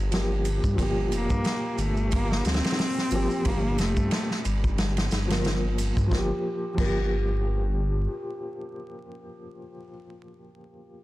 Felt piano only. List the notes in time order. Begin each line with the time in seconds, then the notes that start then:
Already playing: F3 A#3 G4
0.11 F3 A#3 G4
0.75 A#2 F3
0.82 G4
3.11 F3 A#3 G4
3.43 A#2 F3
3.50 G4
5.27 F3 A#3
5.34 A#4
6.07 F3
6.12 A#3
6.18 G4
6.74 F3
6.79 A#3
6.85 G4